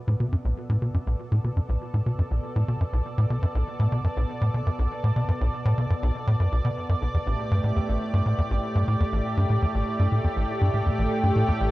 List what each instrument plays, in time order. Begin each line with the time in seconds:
Already playing: analog synth pad B2 B3 A4 D5 E5
0.08 analog synth bass A2
0.20 analog synth bass B2
0.32 analog synth bass F#2
0.45 analog synth bass B1
0.70 analog synth bass A2
0.82 analog synth bass B2
0.94 analog synth bass F#2
1.07 analog synth bass B1
1.32 analog synth bass A2
1.44 analog synth bass B2
1.56 analog synth bass F#2
1.69 analog synth bass B1
1.94 analog synth bass A2
2.06 analog synth bass B2
2.18 analog synth bass F#2
2.31 analog synth bass B1
2.56 analog synth bass A2
2.68 analog synth bass B2
2.80 analog synth bass F#2
2.93 analog synth bass B1
3.18 analog synth bass A2
3.30 analog synth bass B2
3.42 analog synth bass F#2
3.55 analog synth bass B1
3.80 analog synth bass A2
3.92 analog synth bass B2
4.04 analog synth bass F#2
4.17 analog synth bass B1
4.41 analog synth bass A2
4.54 analog synth bass B2
4.66 analog synth bass F#2
4.79 analog synth bass B1
5.04 analog synth bass A2
5.16 analog synth bass B2
5.28 analog synth bass F#2
5.41 analog synth bass B1
5.65 analog synth bass A2
5.78 analog synth bass B2
5.90 analog synth bass F#2
6.03 analog synth bass B1
6.27 analog synth bass A2
6.40 analog synth bass F#2
6.52 analog synth bass B1
6.65 analog synth bass B2
6.89 analog synth bass F#2
7.02 analog synth bass B1
7.14 analog synth bass E2, analog synth pad A2
7.23 analog synth bass A1, analog synth pad G4
7.51 analog synth bass G2, analog synth pad A3
7.64 analog synth bass A2
7.76 analog synth bass E2
7.89 analog synth bass A1
8.13 analog synth bass G2
8.26 analog synth bass A2
8.38 analog synth bass E2
8.51 analog synth bass A1
8.75 analog synth bass G2
8.88 analog synth bass A2
9.00 analog synth bass E2
9.12 analog synth bass A1
9.37 analog synth bass G2
9.50 analog synth bass A2
9.62 analog synth bass E2
9.74 analog synth bass A1
9.99 analog synth bass G2
10.12 analog synth bass A2
10.24 analog synth bass E2
10.36 analog synth bass A1
10.61 analog synth bass G2
10.74 analog synth bass A2
10.86 analog synth bass E2
10.99 analog synth bass A1
11.23 analog synth bass G2
11.36 analog synth bass A2
11.48 analog synth bass E2
11.61 analog synth bass A1